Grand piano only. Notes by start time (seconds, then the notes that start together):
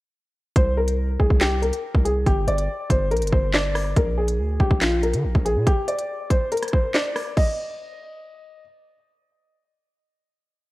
0.56 C5
0.77 A#4
1.20 G#4
1.41 G4
1.62 A#4
2.05 G#4
2.26 G4
2.48 D5
2.90 C5
3.11 A#4
3.32 C5
3.54 D5
3.96 A#4
4.18 G#4
4.60 G4
4.82 F4
5.03 A#4
5.45 G#4
5.67 G4
5.88 D5
6.30 C5
6.52 A#4
6.73 C5
6.94 D5
7.37 D#5